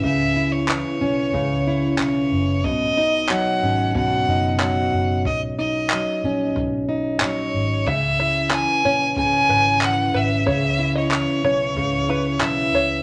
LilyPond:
<<
  \new Staff \with { instrumentName = "Violin" } { \time 4/4 \key cis \dorian \tempo 4 = 92 e''8. cis''2~ cis''16 cis''4 | dis''4 fis''4 fis''4 fis''4 | dis''8 dis''4. r4 cis''4 | e''4 gis''4 gis''4 fis''8 e''8 |
e''8. cis''2~ cis''16 e''4 | }
  \new Staff \with { instrumentName = "Five-string banjo" } { \time 4/4 \key cis \dorian r1 | r1 | r1 | e''8 e''8. r16 cis''16 r8. b'16 r8. b'16 r16 |
cis''16 r8 dis''8 r16 cis''16 r8. b'16 r8. cis''16 r16 | }
  \new Staff \with { instrumentName = "Steel-string acoustic guitar" } { \clef bass \time 4/4 \key cis \dorian <cis e cis' e'>8 e'8 e8 cis'8 cis8 e'8 e4 | b,8 dis'8 fis8 cis'8 b,8 dis'8 fis4~ | fis8 dis'8 fis8 cis'4 dis'8 fis4 | cis8 e'8 e8 cis'8 cis8 e'8 e4 |
cis8 e'8 e8 cis'8 cis8 e'8 e4 | }
  \new Staff \with { instrumentName = "Fingered electric bass" } { \clef bass \time 4/4 \key cis \dorian cis,4~ cis,16 r16 b,,8 cis,4 b,,8 fis,,8 | b,,4~ b,,16 r16 gis,,4 fis,,4 fis,,8 | b,,4~ b,,16 r16 ais,,8 b,,4 ais,,8 gis,,8 | cis,4~ cis,16 r16 ais,,4 gis,,4 gis,,8 |
cis,4~ cis,16 r16 b,,8 cis,4 b,,8 cis,8 | }
  \new DrumStaff \with { instrumentName = "Drums" } \drummode { \time 4/4 bd4 hc4 bd4 hc4 | bd4 hc4 bd4 hc4 | bd4 hc4 bd4 hc4 | bd4 hc4 bd4 hc4 |
bd4 hc4 bd4 hc4 | }
>>